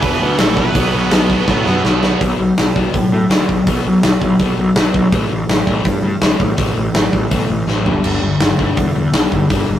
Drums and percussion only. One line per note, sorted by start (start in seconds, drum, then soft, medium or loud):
0.02 kick loud
0.02 open hi-hat medium
0.39 snare loud
0.39 open hi-hat medium
0.57 kick medium
0.75 kick loud
0.75 open hi-hat medium
1.11 snare loud
1.11 open hi-hat medium
1.30 kick medium
1.48 kick loud
1.48 snare medium
1.66 snare medium
1.85 snare medium
2.03 snare loud
2.21 kick loud
2.21 open hi-hat medium
2.58 snare loud
2.58 open hi-hat medium
2.76 kick medium
2.94 kick loud
2.94 open hi-hat soft
3.31 snare loud
3.31 open hi-hat medium
3.49 kick medium
3.67 kick loud
3.67 open hi-hat medium
4.03 snare loud
4.03 open hi-hat medium
4.21 kick medium
4.39 kick loud
4.39 open hi-hat medium
4.76 snare loud
4.76 open hi-hat medium
4.94 kick medium
5.12 kick loud
5.12 open hi-hat medium
5.49 snare loud
5.49 open hi-hat medium
5.67 kick medium
5.85 kick loud
5.85 open hi-hat soft
6.21 snare loud
6.21 open hi-hat medium
6.40 kick medium
6.58 kick loud
6.58 open hi-hat medium
6.95 snare loud
6.95 open hi-hat medium
7.13 kick medium
7.31 kick loud
7.31 open hi-hat medium
7.68 snare medium
7.86 floor tom medium
8.04 crash medium
8.40 snare loud
8.40 open hi-hat medium
8.59 kick medium
8.77 kick loud
8.77 open hi-hat medium
9.13 snare loud
9.13 open hi-hat medium
9.32 kick medium
9.50 kick loud
9.50 open hi-hat medium